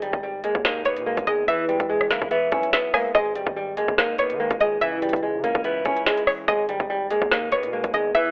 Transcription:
Already playing: 808-style bass G#1, clean electric guitar G#2, synth pluck D#5
0.02 clean electric guitar D#3, nylon-string guitar G3, closed hi-hat
0.13 808-style bass G#1, kick
0.23 nylon-string guitar G3
0.44 nylon-string guitar G#3, clean electric guitar A#3, closed hi-hat
0.55 808-style bass D#2, kick
0.65 nylon-string guitar A#3, clean electric guitar D#4, snare
0.85 clean electric guitar A#3, nylon-string guitar B3, synth pluck C#5, closed hi-hat
0.97 808-style bass B2, closed hi-hat
1.06 clean electric guitar G#3, nylon-string guitar A#3
1.17 808-style bass D#2, kick, closed hi-hat
1.27 808-style bass E2, clean electric guitar D#3, nylon-string guitar G#3, synth pluck D#5, closed hi-hat
1.48 nylon-string guitar E3, clean electric guitar E3, synth pluck E5, closed hi-hat
1.69 nylon-string guitar G3, clean electric guitar G#3, closed hi-hat
1.80 808-style bass E1, kick, closed hi-hat
1.89 nylon-string guitar G#3
2.01 cross-stick
2.10 808-style bass B1, nylon-string guitar A#3, clean electric guitar E4, snare, closed hi-hat
2.22 808-style bass E1, kick
2.31 nylon-string guitar B3, clean electric guitar E5, closed hi-hat
2.52 808-style bass B1, nylon-string guitar C#4, clean electric guitar E4, kick, closed hi-hat
2.63 closed hi-hat
2.73 nylon-string guitar B3, clean electric guitar B3, synth pluck E5, snare, closed hi-hat
2.94 clean electric guitar G#3, nylon-string guitar A#3, synth pluck G#5, cross-stick, open hi-hat
3.15 808-style bass G#1, clean electric guitar G#2, nylon-string guitar G#3, synth pluck D#5, kick, closed hi-hat
3.36 clean electric guitar D#3, nylon-string guitar G3, closed hi-hat
3.47 808-style bass G#1, kick
3.56 nylon-string guitar G3
3.77 nylon-string guitar G#3, clean electric guitar A#3, closed hi-hat
3.88 808-style bass G#1, kick
3.98 nylon-string guitar A#3, clean electric guitar D#4, snare
4.18 clean electric guitar A#3, nylon-string guitar B3, synth pluck C#5, closed hi-hat
4.30 808-style bass D#3, closed hi-hat
4.40 clean electric guitar G#3, nylon-string guitar A#3
4.51 808-style bass G#1, kick, closed hi-hat
4.60 808-style bass C#2, clean electric guitar D#3, nylon-string guitar G#3, synth pluck D#5, closed hi-hat
4.81 clean electric guitar C#3, nylon-string guitar E3, synth pluck E5, closed hi-hat
5.02 clean electric guitar E3, nylon-string guitar G3, closed hi-hat
5.09 closed hi-hat
5.13 808-style bass C#2, kick, closed hi-hat
5.23 nylon-string guitar G#3
5.34 808-style bass C#3
5.44 808-style bass C#2, nylon-string guitar A#3, clean electric guitar C#4, closed hi-hat
5.55 808-style bass C#2, kick
5.64 nylon-string guitar B3, clean electric guitar E4, closed hi-hat
5.85 808-style bass C#2, clean electric guitar C#4, nylon-string guitar C#4, kick, closed hi-hat
5.97 closed hi-hat
6.06 nylon-string guitar G#3, clean electric guitar G#3, snare, closed hi-hat
6.17 closed hi-hat
6.27 clean electric guitar E3, synth pluck C#5, cross-stick, open hi-hat
6.48 808-style bass G#1, clean electric guitar G#2, nylon-string guitar G#3, synth pluck D#5, kick, closed hi-hat
6.69 clean electric guitar D#3, nylon-string guitar G3, closed hi-hat
6.80 808-style bass G#1, kick
6.90 nylon-string guitar G3
7.11 nylon-string guitar G#3, clean electric guitar A#3, closed hi-hat
7.22 808-style bass D#2, kick
7.31 nylon-string guitar A#3, clean electric guitar D#4, snare
7.52 clean electric guitar A#3, nylon-string guitar B3, synth pluck C#5, closed hi-hat
7.63 808-style bass B2, closed hi-hat
7.73 clean electric guitar G#3, nylon-string guitar A#3
7.84 808-style bass D#2, kick, closed hi-hat
7.94 808-style bass E2, clean electric guitar D#3, nylon-string guitar G#3, synth pluck D#5, closed hi-hat
8.15 clean electric guitar E3, nylon-string guitar E3, synth pluck E5, closed hi-hat

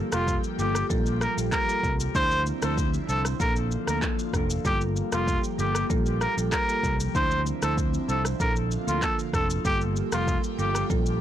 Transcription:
Already playing: analog synth pad F3 A#3 G4
0.12 fingered electric bass F1, marimba G3 A#3 F4 A4, trumpet F4, cross-stick, shaker
0.27 kick, shaker
0.44 shaker
0.58 fingered electric bass G1, marimba G3 A#3 F4 A4, trumpet G4, shaker
0.75 cross-stick, shaker
0.90 fingered electric bass A#1, marimba G3 A#3 F4 A4, kick, shaker
1.06 shaker
1.21 trumpet A#4, cross-stick, shaker
1.37 fingered electric bass A#1, marimba G3 A#3 F4 A4, shaker
1.52 trumpet A#4, kick, cross-stick, clap, shaker
1.68 marimba G3 A#3 F4 A4, shaker
1.83 fingered electric bass C2, kick, shaker
2.00 shaker
2.15 fingered electric bass D2, analog synth pad D3 C4 E4, marimba F3 D4 E4 C5, trumpet C5, kick, shaker
2.31 shaker
2.46 shaker
2.62 fingered electric bass D2, marimba F3 D4 E4 C5, trumpet A4, cross-stick, shaker
2.77 kick, shaker
2.94 shaker
3.08 fingered electric bass C2, marimba F3 D4 E4 C5, trumpet A4, shaker
3.25 cross-stick, shaker
3.40 fingered electric bass A#1, analog synth pad D3 A#3 F4, marimba F3 A#3 D4 A4, trumpet A#4, kick, shaker
3.56 shaker
3.71 shaker
3.87 fingered electric bass D2, marimba F3 A#3 D4 A4, trumpet A#4, cross-stick, shaker
4.02 kick, cross-stick, clap, shaker
4.19 shaker
4.33 fingered electric bass F1, marimba F3 A#3 D4 A4, kick, cross-stick, shaker
4.50 shaker
4.65 fingered electric bass G1, analog synth pad F3 G4, marimba G3 A#3 F4 A4, trumpet G4, kick, shaker
4.81 shaker
4.96 shaker
5.12 fingered electric bass F1, marimba G3 A#3 F4 A4, trumpet F4, cross-stick, shaker
5.27 kick, shaker
5.44 shaker
5.58 fingered electric bass G1, marimba G3 A#3 F4 A4, trumpet G4, shaker
5.75 cross-stick, shaker
5.90 fingered electric bass A#1, marimba G3 A#3 F4 A4, kick, shaker
6.06 shaker
6.21 trumpet A#4, cross-stick, shaker
6.37 fingered electric bass A#1, marimba G3 A#3 F4 A4, shaker
6.52 trumpet A#4, kick, cross-stick, clap, shaker
6.68 marimba G3 A#3 F4 A4, shaker
6.83 fingered electric bass C2, kick, shaker
7.00 shaker
7.15 fingered electric bass D2, analog synth pad D3 C4 E4, marimba F3 D4 E4 C5, trumpet C5, kick, shaker
7.31 shaker
7.46 shaker
7.62 fingered electric bass D2, marimba F3 D4 E4 C5, trumpet A4, cross-stick, shaker
7.77 kick, shaker
7.94 shaker
8.08 fingered electric bass C2, marimba F3 D4 E4 C5, trumpet A4, shaker
8.25 cross-stick, shaker
8.40 fingered electric bass A#1, analog synth pad D3 A#3 F4, marimba F3 A#3 D4 A4, trumpet A#4, kick, shaker
8.56 shaker
8.71 shaker
8.87 fingered electric bass D2, marimba F3 A#3 D4 A4, trumpet F4, shaker
9.02 trumpet A4, kick, cross-stick, clap, shaker
9.19 shaker
9.33 fingered electric bass F1, marimba F3 A#3 D4 A4, trumpet A4, kick, cross-stick, shaker
9.50 shaker
9.65 fingered electric bass G1, analog synth pad F3 A#3 G4, marimba G3 A#3 F4 A4, trumpet G4, kick, shaker
9.81 shaker
9.96 shaker
10.12 fingered electric bass F1, marimba G3 A#3 F4 A4, trumpet F4, cross-stick, shaker
10.27 kick, shaker
10.44 shaker
10.58 fingered electric bass G1, marimba G3 A#3 F4 A4, trumpet G4, shaker
10.75 cross-stick, shaker
10.90 fingered electric bass A#1, marimba G3 A#3 F4 A4, kick, shaker
11.06 shaker

